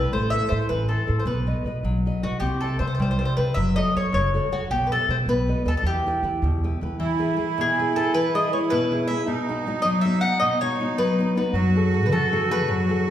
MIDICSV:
0, 0, Header, 1, 5, 480
1, 0, Start_track
1, 0, Key_signature, 1, "minor"
1, 0, Tempo, 381437
1, 162, Time_signature, 6, 3, 24, 8
1, 8803, Tempo, 378310
1, 8805, Key_signature, 4, "major"
1, 16551, End_track
2, 0, Start_track
2, 0, Title_t, "Mandolin"
2, 0, Program_c, 0, 25
2, 0, Note_on_c, 0, 71, 67
2, 146, Note_off_c, 0, 71, 0
2, 165, Note_on_c, 0, 72, 63
2, 382, Note_on_c, 0, 76, 82
2, 429, Note_off_c, 0, 72, 0
2, 613, Note_off_c, 0, 76, 0
2, 613, Note_on_c, 0, 72, 65
2, 844, Note_off_c, 0, 72, 0
2, 870, Note_on_c, 0, 71, 65
2, 1110, Note_off_c, 0, 71, 0
2, 1115, Note_on_c, 0, 69, 48
2, 1474, Note_off_c, 0, 69, 0
2, 1503, Note_on_c, 0, 72, 44
2, 1591, Note_off_c, 0, 72, 0
2, 1596, Note_on_c, 0, 71, 52
2, 2105, Note_off_c, 0, 71, 0
2, 2811, Note_on_c, 0, 66, 58
2, 3013, Note_off_c, 0, 66, 0
2, 3018, Note_on_c, 0, 67, 75
2, 3272, Note_off_c, 0, 67, 0
2, 3280, Note_on_c, 0, 69, 64
2, 3507, Note_off_c, 0, 69, 0
2, 3512, Note_on_c, 0, 72, 56
2, 3601, Note_off_c, 0, 72, 0
2, 3616, Note_on_c, 0, 72, 41
2, 3693, Note_off_c, 0, 72, 0
2, 3708, Note_on_c, 0, 72, 48
2, 3787, Note_off_c, 0, 72, 0
2, 3802, Note_on_c, 0, 72, 59
2, 3897, Note_off_c, 0, 72, 0
2, 3912, Note_on_c, 0, 72, 57
2, 3997, Note_off_c, 0, 72, 0
2, 4012, Note_on_c, 0, 72, 51
2, 4079, Note_off_c, 0, 72, 0
2, 4095, Note_on_c, 0, 72, 56
2, 4187, Note_off_c, 0, 72, 0
2, 4237, Note_on_c, 0, 71, 70
2, 4459, Note_on_c, 0, 76, 76
2, 4461, Note_off_c, 0, 71, 0
2, 4713, Note_off_c, 0, 76, 0
2, 4730, Note_on_c, 0, 75, 79
2, 4952, Note_off_c, 0, 75, 0
2, 4991, Note_on_c, 0, 73, 67
2, 5199, Note_off_c, 0, 73, 0
2, 5212, Note_on_c, 0, 73, 74
2, 5664, Note_off_c, 0, 73, 0
2, 5695, Note_on_c, 0, 66, 57
2, 5909, Note_off_c, 0, 66, 0
2, 5926, Note_on_c, 0, 67, 69
2, 6125, Note_off_c, 0, 67, 0
2, 6126, Note_on_c, 0, 71, 40
2, 6186, Note_off_c, 0, 71, 0
2, 6191, Note_on_c, 0, 69, 77
2, 6401, Note_off_c, 0, 69, 0
2, 6424, Note_on_c, 0, 72, 62
2, 6487, Note_off_c, 0, 72, 0
2, 6655, Note_on_c, 0, 71, 71
2, 7104, Note_off_c, 0, 71, 0
2, 7148, Note_on_c, 0, 69, 74
2, 7210, Note_off_c, 0, 69, 0
2, 7265, Note_on_c, 0, 69, 55
2, 7356, Note_off_c, 0, 69, 0
2, 7381, Note_on_c, 0, 67, 74
2, 8303, Note_off_c, 0, 67, 0
2, 9582, Note_on_c, 0, 68, 71
2, 10012, Note_off_c, 0, 68, 0
2, 10029, Note_on_c, 0, 69, 76
2, 10238, Note_off_c, 0, 69, 0
2, 10260, Note_on_c, 0, 71, 91
2, 10494, Note_off_c, 0, 71, 0
2, 10522, Note_on_c, 0, 75, 78
2, 10728, Note_off_c, 0, 75, 0
2, 10751, Note_on_c, 0, 73, 63
2, 10814, Note_off_c, 0, 73, 0
2, 10969, Note_on_c, 0, 71, 83
2, 11419, Note_off_c, 0, 71, 0
2, 11442, Note_on_c, 0, 76, 77
2, 11659, Note_off_c, 0, 76, 0
2, 12387, Note_on_c, 0, 75, 83
2, 12457, Note_off_c, 0, 75, 0
2, 12632, Note_on_c, 0, 76, 78
2, 12856, Note_off_c, 0, 76, 0
2, 12882, Note_on_c, 0, 78, 85
2, 13096, Note_off_c, 0, 78, 0
2, 13117, Note_on_c, 0, 75, 80
2, 13381, Note_off_c, 0, 75, 0
2, 13389, Note_on_c, 0, 73, 99
2, 13811, Note_off_c, 0, 73, 0
2, 13863, Note_on_c, 0, 71, 83
2, 14308, Note_off_c, 0, 71, 0
2, 14360, Note_on_c, 0, 71, 58
2, 14561, Note_off_c, 0, 71, 0
2, 15230, Note_on_c, 0, 71, 54
2, 15301, Note_off_c, 0, 71, 0
2, 15311, Note_on_c, 0, 69, 66
2, 15757, Note_off_c, 0, 69, 0
2, 15805, Note_on_c, 0, 71, 96
2, 16006, Note_off_c, 0, 71, 0
2, 16551, End_track
3, 0, Start_track
3, 0, Title_t, "Nylon-string guitar"
3, 0, Program_c, 1, 24
3, 159, Note_on_c, 1, 57, 54
3, 409, Note_on_c, 1, 64, 34
3, 420, Note_on_c, 1, 69, 31
3, 429, Note_on_c, 1, 72, 37
3, 632, Note_off_c, 1, 64, 0
3, 633, Note_off_c, 1, 57, 0
3, 635, Note_off_c, 1, 69, 0
3, 636, Note_off_c, 1, 72, 0
3, 644, Note_on_c, 1, 64, 28
3, 652, Note_on_c, 1, 69, 30
3, 661, Note_on_c, 1, 72, 37
3, 881, Note_on_c, 1, 52, 51
3, 1038, Note_off_c, 1, 64, 0
3, 1040, Note_off_c, 1, 69, 0
3, 1041, Note_off_c, 1, 72, 0
3, 1126, Note_on_c, 1, 69, 29
3, 1127, Note_on_c, 1, 64, 37
3, 1142, Note_on_c, 1, 72, 40
3, 1332, Note_off_c, 1, 64, 0
3, 1336, Note_off_c, 1, 69, 0
3, 1344, Note_off_c, 1, 72, 0
3, 1345, Note_on_c, 1, 64, 30
3, 1353, Note_off_c, 1, 52, 0
3, 1356, Note_on_c, 1, 69, 28
3, 1359, Note_on_c, 1, 72, 37
3, 1539, Note_off_c, 1, 64, 0
3, 1541, Note_off_c, 1, 69, 0
3, 1546, Note_off_c, 1, 72, 0
3, 1579, Note_on_c, 1, 59, 58
3, 1844, Note_on_c, 1, 66, 35
3, 1849, Note_on_c, 1, 71, 28
3, 1856, Note_on_c, 1, 75, 34
3, 2063, Note_off_c, 1, 59, 0
3, 2069, Note_off_c, 1, 66, 0
3, 2069, Note_off_c, 1, 71, 0
3, 2084, Note_on_c, 1, 66, 28
3, 2085, Note_on_c, 1, 71, 28
3, 2087, Note_off_c, 1, 75, 0
3, 2102, Note_on_c, 1, 75, 33
3, 2321, Note_on_c, 1, 54, 54
3, 2479, Note_off_c, 1, 66, 0
3, 2479, Note_off_c, 1, 71, 0
3, 2490, Note_off_c, 1, 75, 0
3, 2591, Note_on_c, 1, 66, 31
3, 2602, Note_on_c, 1, 71, 30
3, 2606, Note_on_c, 1, 75, 40
3, 2793, Note_off_c, 1, 66, 0
3, 2798, Note_off_c, 1, 54, 0
3, 2801, Note_off_c, 1, 71, 0
3, 2808, Note_on_c, 1, 66, 31
3, 2809, Note_off_c, 1, 75, 0
3, 2816, Note_on_c, 1, 71, 33
3, 2824, Note_on_c, 1, 75, 33
3, 2995, Note_off_c, 1, 66, 0
3, 3000, Note_off_c, 1, 71, 0
3, 3005, Note_off_c, 1, 75, 0
3, 3040, Note_on_c, 1, 60, 48
3, 3296, Note_on_c, 1, 67, 34
3, 3305, Note_on_c, 1, 72, 27
3, 3313, Note_on_c, 1, 76, 33
3, 3516, Note_off_c, 1, 72, 0
3, 3520, Note_off_c, 1, 60, 0
3, 3524, Note_off_c, 1, 67, 0
3, 3530, Note_off_c, 1, 76, 0
3, 3531, Note_on_c, 1, 72, 32
3, 3539, Note_on_c, 1, 67, 30
3, 3545, Note_on_c, 1, 76, 39
3, 3771, Note_on_c, 1, 55, 57
3, 3926, Note_off_c, 1, 72, 0
3, 3930, Note_off_c, 1, 67, 0
3, 3934, Note_off_c, 1, 76, 0
3, 4030, Note_on_c, 1, 67, 31
3, 4037, Note_on_c, 1, 72, 29
3, 4039, Note_on_c, 1, 76, 40
3, 4237, Note_off_c, 1, 67, 0
3, 4242, Note_off_c, 1, 76, 0
3, 4245, Note_off_c, 1, 55, 0
3, 4245, Note_off_c, 1, 72, 0
3, 4252, Note_on_c, 1, 67, 32
3, 4259, Note_on_c, 1, 76, 33
3, 4260, Note_on_c, 1, 72, 34
3, 4439, Note_off_c, 1, 67, 0
3, 4442, Note_off_c, 1, 76, 0
3, 4444, Note_off_c, 1, 72, 0
3, 4482, Note_on_c, 1, 54, 56
3, 4736, Note_on_c, 1, 66, 32
3, 4742, Note_on_c, 1, 69, 36
3, 4753, Note_on_c, 1, 73, 44
3, 4958, Note_off_c, 1, 66, 0
3, 4960, Note_off_c, 1, 54, 0
3, 4964, Note_off_c, 1, 69, 0
3, 4973, Note_on_c, 1, 66, 34
3, 4975, Note_off_c, 1, 73, 0
3, 4979, Note_on_c, 1, 69, 30
3, 4991, Note_on_c, 1, 73, 37
3, 5191, Note_on_c, 1, 49, 55
3, 5366, Note_off_c, 1, 66, 0
3, 5369, Note_off_c, 1, 69, 0
3, 5376, Note_off_c, 1, 73, 0
3, 5461, Note_on_c, 1, 66, 37
3, 5468, Note_on_c, 1, 69, 32
3, 5481, Note_on_c, 1, 73, 45
3, 5672, Note_off_c, 1, 49, 0
3, 5673, Note_off_c, 1, 69, 0
3, 5674, Note_off_c, 1, 66, 0
3, 5680, Note_off_c, 1, 73, 0
3, 5688, Note_on_c, 1, 66, 36
3, 5692, Note_on_c, 1, 69, 33
3, 5695, Note_on_c, 1, 73, 40
3, 5875, Note_off_c, 1, 66, 0
3, 5875, Note_off_c, 1, 69, 0
3, 5879, Note_off_c, 1, 73, 0
3, 5922, Note_on_c, 1, 59, 53
3, 6192, Note_on_c, 1, 67, 36
3, 6199, Note_on_c, 1, 71, 30
3, 6201, Note_on_c, 1, 76, 44
3, 6396, Note_off_c, 1, 59, 0
3, 6401, Note_off_c, 1, 67, 0
3, 6408, Note_off_c, 1, 71, 0
3, 6412, Note_off_c, 1, 76, 0
3, 6416, Note_on_c, 1, 67, 35
3, 6421, Note_on_c, 1, 71, 31
3, 6430, Note_on_c, 1, 76, 40
3, 6599, Note_off_c, 1, 67, 0
3, 6603, Note_off_c, 1, 71, 0
3, 6605, Note_off_c, 1, 76, 0
3, 6649, Note_on_c, 1, 59, 52
3, 6897, Note_on_c, 1, 71, 34
3, 6906, Note_on_c, 1, 66, 38
3, 6908, Note_on_c, 1, 75, 38
3, 7102, Note_off_c, 1, 66, 0
3, 7105, Note_off_c, 1, 75, 0
3, 7107, Note_off_c, 1, 71, 0
3, 7115, Note_on_c, 1, 66, 42
3, 7120, Note_off_c, 1, 59, 0
3, 7122, Note_on_c, 1, 71, 35
3, 7122, Note_on_c, 1, 75, 38
3, 7306, Note_off_c, 1, 66, 0
3, 7309, Note_off_c, 1, 75, 0
3, 7310, Note_off_c, 1, 71, 0
3, 7368, Note_on_c, 1, 52, 50
3, 7631, Note_on_c, 1, 64, 38
3, 7638, Note_on_c, 1, 67, 36
3, 7648, Note_on_c, 1, 71, 44
3, 7830, Note_off_c, 1, 64, 0
3, 7835, Note_off_c, 1, 67, 0
3, 7840, Note_off_c, 1, 52, 0
3, 7844, Note_off_c, 1, 71, 0
3, 7847, Note_on_c, 1, 64, 35
3, 7849, Note_on_c, 1, 67, 31
3, 7859, Note_on_c, 1, 71, 42
3, 8102, Note_on_c, 1, 47, 62
3, 8241, Note_off_c, 1, 64, 0
3, 8244, Note_off_c, 1, 67, 0
3, 8250, Note_off_c, 1, 71, 0
3, 8354, Note_on_c, 1, 64, 36
3, 8360, Note_on_c, 1, 67, 35
3, 8361, Note_on_c, 1, 71, 42
3, 8558, Note_off_c, 1, 64, 0
3, 8570, Note_off_c, 1, 47, 0
3, 8573, Note_on_c, 1, 64, 33
3, 8574, Note_off_c, 1, 71, 0
3, 8575, Note_off_c, 1, 67, 0
3, 8589, Note_on_c, 1, 67, 31
3, 8593, Note_on_c, 1, 71, 40
3, 8758, Note_off_c, 1, 64, 0
3, 8768, Note_off_c, 1, 67, 0
3, 8768, Note_off_c, 1, 71, 0
3, 8805, Note_on_c, 1, 52, 68
3, 9042, Note_on_c, 1, 64, 38
3, 9049, Note_on_c, 1, 68, 40
3, 9063, Note_on_c, 1, 71, 43
3, 9259, Note_off_c, 1, 64, 0
3, 9264, Note_off_c, 1, 68, 0
3, 9265, Note_off_c, 1, 71, 0
3, 9273, Note_on_c, 1, 64, 40
3, 9280, Note_on_c, 1, 71, 36
3, 9281, Note_off_c, 1, 52, 0
3, 9284, Note_on_c, 1, 68, 33
3, 9543, Note_on_c, 1, 47, 65
3, 9675, Note_off_c, 1, 64, 0
3, 9678, Note_off_c, 1, 68, 0
3, 9679, Note_off_c, 1, 71, 0
3, 9806, Note_on_c, 1, 64, 40
3, 9814, Note_on_c, 1, 68, 38
3, 9817, Note_on_c, 1, 71, 49
3, 10008, Note_off_c, 1, 64, 0
3, 10010, Note_off_c, 1, 47, 0
3, 10010, Note_off_c, 1, 68, 0
3, 10022, Note_off_c, 1, 71, 0
3, 10022, Note_on_c, 1, 64, 44
3, 10027, Note_on_c, 1, 68, 31
3, 10037, Note_on_c, 1, 71, 42
3, 10259, Note_on_c, 1, 52, 56
3, 10411, Note_off_c, 1, 64, 0
3, 10413, Note_off_c, 1, 68, 0
3, 10420, Note_off_c, 1, 71, 0
3, 10518, Note_on_c, 1, 64, 46
3, 10519, Note_on_c, 1, 68, 43
3, 10526, Note_on_c, 1, 71, 42
3, 10727, Note_off_c, 1, 52, 0
3, 10742, Note_off_c, 1, 64, 0
3, 10744, Note_off_c, 1, 68, 0
3, 10752, Note_off_c, 1, 71, 0
3, 10756, Note_on_c, 1, 64, 38
3, 10762, Note_on_c, 1, 68, 32
3, 10768, Note_on_c, 1, 71, 38
3, 10987, Note_on_c, 1, 47, 72
3, 11137, Note_off_c, 1, 64, 0
3, 11138, Note_off_c, 1, 68, 0
3, 11143, Note_off_c, 1, 71, 0
3, 11233, Note_on_c, 1, 64, 40
3, 11241, Note_on_c, 1, 68, 40
3, 11250, Note_on_c, 1, 71, 44
3, 11447, Note_off_c, 1, 47, 0
3, 11459, Note_off_c, 1, 64, 0
3, 11461, Note_off_c, 1, 68, 0
3, 11469, Note_off_c, 1, 71, 0
3, 11472, Note_on_c, 1, 64, 44
3, 11479, Note_on_c, 1, 68, 35
3, 11484, Note_on_c, 1, 71, 42
3, 11647, Note_off_c, 1, 64, 0
3, 11649, Note_off_c, 1, 68, 0
3, 11654, Note_off_c, 1, 71, 0
3, 11691, Note_on_c, 1, 47, 58
3, 11963, Note_on_c, 1, 59, 37
3, 11966, Note_on_c, 1, 63, 34
3, 11971, Note_on_c, 1, 66, 45
3, 12157, Note_off_c, 1, 47, 0
3, 12180, Note_off_c, 1, 59, 0
3, 12188, Note_off_c, 1, 63, 0
3, 12192, Note_off_c, 1, 66, 0
3, 12195, Note_on_c, 1, 59, 42
3, 12202, Note_on_c, 1, 63, 34
3, 12208, Note_on_c, 1, 66, 48
3, 12420, Note_on_c, 1, 54, 65
3, 12573, Note_off_c, 1, 59, 0
3, 12578, Note_off_c, 1, 63, 0
3, 12581, Note_off_c, 1, 66, 0
3, 12674, Note_on_c, 1, 59, 45
3, 12685, Note_on_c, 1, 63, 43
3, 12685, Note_on_c, 1, 66, 39
3, 12871, Note_off_c, 1, 59, 0
3, 12881, Note_off_c, 1, 54, 0
3, 12885, Note_off_c, 1, 63, 0
3, 12887, Note_on_c, 1, 59, 40
3, 12890, Note_off_c, 1, 66, 0
3, 12900, Note_on_c, 1, 63, 34
3, 12906, Note_on_c, 1, 66, 44
3, 13138, Note_on_c, 1, 47, 63
3, 13276, Note_off_c, 1, 59, 0
3, 13284, Note_off_c, 1, 63, 0
3, 13287, Note_off_c, 1, 66, 0
3, 13402, Note_on_c, 1, 59, 38
3, 13410, Note_on_c, 1, 63, 38
3, 13410, Note_on_c, 1, 66, 49
3, 13600, Note_off_c, 1, 47, 0
3, 13619, Note_off_c, 1, 59, 0
3, 13629, Note_off_c, 1, 63, 0
3, 13634, Note_on_c, 1, 59, 44
3, 13638, Note_off_c, 1, 66, 0
3, 13644, Note_on_c, 1, 63, 29
3, 13653, Note_on_c, 1, 66, 40
3, 13860, Note_on_c, 1, 54, 65
3, 14015, Note_off_c, 1, 59, 0
3, 14021, Note_off_c, 1, 63, 0
3, 14026, Note_off_c, 1, 66, 0
3, 14122, Note_on_c, 1, 59, 44
3, 14132, Note_on_c, 1, 63, 37
3, 14143, Note_on_c, 1, 66, 47
3, 14320, Note_off_c, 1, 59, 0
3, 14325, Note_off_c, 1, 54, 0
3, 14335, Note_on_c, 1, 59, 36
3, 14336, Note_off_c, 1, 63, 0
3, 14342, Note_off_c, 1, 66, 0
3, 14352, Note_on_c, 1, 63, 32
3, 14357, Note_on_c, 1, 66, 47
3, 14518, Note_off_c, 1, 59, 0
3, 14528, Note_off_c, 1, 63, 0
3, 14531, Note_off_c, 1, 66, 0
3, 14584, Note_on_c, 1, 54, 58
3, 14844, Note_on_c, 1, 66, 37
3, 14852, Note_on_c, 1, 68, 38
3, 14858, Note_on_c, 1, 69, 45
3, 15051, Note_off_c, 1, 54, 0
3, 15058, Note_off_c, 1, 68, 0
3, 15061, Note_off_c, 1, 69, 0
3, 15065, Note_off_c, 1, 66, 0
3, 15071, Note_on_c, 1, 68, 30
3, 15078, Note_on_c, 1, 69, 41
3, 15080, Note_on_c, 1, 66, 37
3, 15303, Note_on_c, 1, 49, 58
3, 15460, Note_off_c, 1, 68, 0
3, 15462, Note_off_c, 1, 69, 0
3, 15464, Note_off_c, 1, 66, 0
3, 15562, Note_on_c, 1, 66, 43
3, 15570, Note_on_c, 1, 68, 41
3, 15570, Note_on_c, 1, 69, 54
3, 15772, Note_off_c, 1, 49, 0
3, 15777, Note_off_c, 1, 68, 0
3, 15781, Note_off_c, 1, 66, 0
3, 15794, Note_on_c, 1, 66, 36
3, 15795, Note_off_c, 1, 69, 0
3, 15795, Note_on_c, 1, 68, 38
3, 15811, Note_on_c, 1, 69, 46
3, 16018, Note_on_c, 1, 54, 60
3, 16177, Note_off_c, 1, 68, 0
3, 16179, Note_off_c, 1, 66, 0
3, 16188, Note_off_c, 1, 69, 0
3, 16282, Note_on_c, 1, 68, 34
3, 16293, Note_on_c, 1, 66, 41
3, 16295, Note_on_c, 1, 69, 50
3, 16486, Note_off_c, 1, 54, 0
3, 16492, Note_off_c, 1, 66, 0
3, 16502, Note_off_c, 1, 68, 0
3, 16508, Note_off_c, 1, 69, 0
3, 16508, Note_on_c, 1, 66, 37
3, 16551, Note_off_c, 1, 66, 0
3, 16551, End_track
4, 0, Start_track
4, 0, Title_t, "Accordion"
4, 0, Program_c, 2, 21
4, 8794, Note_on_c, 2, 64, 96
4, 11623, Note_off_c, 2, 64, 0
4, 11673, Note_on_c, 2, 63, 98
4, 14273, Note_off_c, 2, 63, 0
4, 14549, Note_on_c, 2, 66, 104
4, 16551, Note_off_c, 2, 66, 0
4, 16551, End_track
5, 0, Start_track
5, 0, Title_t, "Upright bass"
5, 0, Program_c, 3, 32
5, 162, Note_on_c, 3, 33, 69
5, 479, Note_off_c, 3, 33, 0
5, 648, Note_on_c, 3, 45, 66
5, 880, Note_on_c, 3, 33, 66
5, 899, Note_off_c, 3, 45, 0
5, 1197, Note_off_c, 3, 33, 0
5, 1372, Note_on_c, 3, 45, 66
5, 1520, Note_off_c, 3, 45, 0
5, 1579, Note_on_c, 3, 35, 77
5, 1903, Note_off_c, 3, 35, 0
5, 2063, Note_on_c, 3, 47, 57
5, 2302, Note_on_c, 3, 35, 58
5, 2321, Note_off_c, 3, 47, 0
5, 2628, Note_off_c, 3, 35, 0
5, 2809, Note_on_c, 3, 35, 56
5, 2961, Note_off_c, 3, 35, 0
5, 3029, Note_on_c, 3, 36, 66
5, 3354, Note_off_c, 3, 36, 0
5, 3522, Note_on_c, 3, 48, 72
5, 3758, Note_on_c, 3, 36, 64
5, 3776, Note_off_c, 3, 48, 0
5, 4080, Note_off_c, 3, 36, 0
5, 4245, Note_on_c, 3, 48, 62
5, 4399, Note_off_c, 3, 48, 0
5, 4486, Note_on_c, 3, 30, 80
5, 4805, Note_off_c, 3, 30, 0
5, 4984, Note_on_c, 3, 42, 69
5, 5199, Note_on_c, 3, 30, 72
5, 5218, Note_off_c, 3, 42, 0
5, 5519, Note_off_c, 3, 30, 0
5, 5680, Note_on_c, 3, 42, 60
5, 5834, Note_off_c, 3, 42, 0
5, 5919, Note_on_c, 3, 35, 71
5, 6238, Note_off_c, 3, 35, 0
5, 6400, Note_on_c, 3, 47, 72
5, 6617, Note_on_c, 3, 35, 71
5, 6636, Note_off_c, 3, 47, 0
5, 6943, Note_off_c, 3, 35, 0
5, 7114, Note_on_c, 3, 39, 58
5, 7269, Note_off_c, 3, 39, 0
5, 7337, Note_on_c, 3, 40, 73
5, 7663, Note_off_c, 3, 40, 0
5, 7836, Note_on_c, 3, 52, 71
5, 8078, Note_on_c, 3, 40, 70
5, 8097, Note_off_c, 3, 52, 0
5, 8399, Note_off_c, 3, 40, 0
5, 8578, Note_on_c, 3, 52, 66
5, 8727, Note_off_c, 3, 52, 0
5, 14560, Note_on_c, 3, 42, 75
5, 15297, Note_off_c, 3, 42, 0
5, 15297, Note_on_c, 3, 54, 75
5, 16018, Note_off_c, 3, 54, 0
5, 16018, Note_on_c, 3, 42, 78
5, 16551, Note_off_c, 3, 42, 0
5, 16551, End_track
0, 0, End_of_file